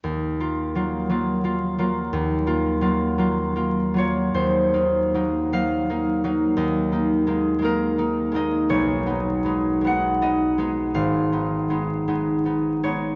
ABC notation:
X:1
M:6/8
L:1/8
Q:3/8=54
K:Ebm
V:1 name="Harp"
z6 | z4 z d | =c3 f3 | e3 B2 e |
^c3 ^f ^d2 | f4- f d |]
V:2 name="Harp"
E,, [B,F] [G,B,F] [G,B,F] [B,F] [G,B,F] | E,, [B,F] [G,B,F] [G,B,F] [B,F] [G,B,F] | E,, [B,E] [G,B,E] [G,B,E] [B,E] [G,B,E] | E,, [B,E] [A,B,E] [A,B,E] [B,E] [A,B,E] |
=B,,, [=B,^D] [^G,B,D] [G,B,D] [B,D] [G,B,D] | A,,, [CE] [A,CE] [A,CE] [CE] [A,CE] |]